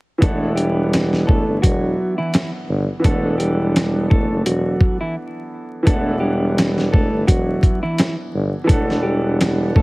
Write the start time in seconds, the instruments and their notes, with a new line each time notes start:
0.18 tuba E1, grand piano E3 B3, kick, closed hi-hat
0.23 clean electric guitar A3 A4, grand piano D4 F#5
0.28 grand piano E4
0.56 clean electric guitar G3 G4, closed hi-hat
0.93 snare, closed hi-hat
1.13 snare
1.27 clean electric guitar A3 A4, kick
1.48 tuba G1
1.62 tuba E1, clean electric guitar F#3 F#4, kick, closed hi-hat
2.18 clean electric guitar E3 E4
2.34 snare, closed hi-hat
2.69 tuba G1
3.00 grand piano E3 B3
3.04 tuba E1, clean electric guitar A3 A4, grand piano D4 F#5, kick, closed hi-hat
3.09 grand piano A4
3.38 clean electric guitar G3 G4, closed hi-hat
3.76 snare, closed hi-hat
4.10 clean electric guitar A3 A4, kick
4.30 tuba F#1
4.46 tuba E1, clean electric guitar F#3 F#4, closed hi-hat
4.81 kick
5.01 clean electric guitar E3 E4
5.83 grand piano E3 B3
5.87 tuba E1, clean electric guitar A3 A4, grand piano D4 F#5, kick, closed hi-hat
5.92 grand piano E4
6.20 clean electric guitar G3 G4
6.58 snare, closed hi-hat
6.78 snare
6.92 clean electric guitar A3 A4, kick
7.12 tuba G1
7.27 tuba E1, clean electric guitar F#3 F#4, kick, closed hi-hat
7.63 kick, closed hi-hat
7.83 clean electric guitar E3 E4
7.98 snare, closed hi-hat
8.34 tuba G1
8.64 grand piano E3 B3, clean electric guitar A3 A4
8.69 tuba E1, grand piano D4 F#5, kick, closed hi-hat
8.74 grand piano A4
8.90 snare
9.03 clean electric guitar G3 G4
9.41 snare, closed hi-hat
9.76 clean electric guitar A3 A4, kick